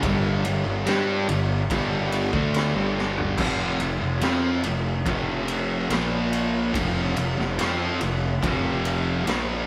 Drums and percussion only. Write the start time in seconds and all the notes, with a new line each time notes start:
0.03 kick, ride
0.45 ride
0.86 snare, ride
1.29 ride
1.70 kick, ride
2.12 ride
2.33 kick
2.54 snare, ride
2.98 snare
3.17 floor tom
3.38 kick, crash
3.80 ride
4.21 snare, ride
4.63 ride
5.06 kick, ride
5.48 ride
5.90 snare, ride
6.33 ride
6.74 kick, ride
7.17 ride
7.40 snare
7.59 snare, ride
8.01 ride
8.43 kick, ride
8.85 ride
9.27 snare, ride